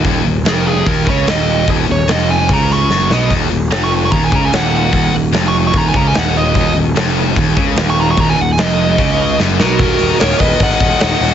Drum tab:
HH |o---o---o---o---|o---o---o-------|o---o---o---o---|o---o---o---o---|
SD |----o-----o-o---|----oo----o-o-o-|----oo------o---|----o-------o---|
BD |o-------o-o-----|o-------o-------|o-------o-o-----|o-------o-o-----|

HH |o---o---o---o---|o---o---o-------|o-o-o-o-o-o-o-o-|
SD |----oo------o---|----oo------o-o-|----o----o--o-o-|
BD |o-------o-o-----|o-------o-------|o-----o-o-o-----|